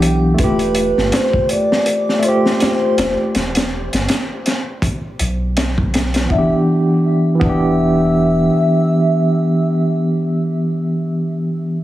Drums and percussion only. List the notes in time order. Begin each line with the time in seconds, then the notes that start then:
0.02 closed hi-hat
0.38 kick, closed hi-hat
0.59 closed hi-hat
0.75 closed hi-hat
0.98 snare
1.12 snare, closed hi-hat
1.33 kick
1.49 closed hi-hat
1.72 snare
1.86 closed hi-hat
2.09 snare
2.23 closed hi-hat
2.46 snare
2.60 snare, closed hi-hat
2.98 snare, closed hi-hat
3.35 snare, closed hi-hat
3.55 snare, closed hi-hat
3.93 snare, closed hi-hat
4.09 snare, closed hi-hat
4.46 snare, closed hi-hat
4.82 kick, closed hi-hat
5.19 closed hi-hat
5.57 snare, closed hi-hat
5.78 kick
5.94 snare, closed hi-hat
6.14 snare, closed hi-hat
6.30 kick
7.41 kick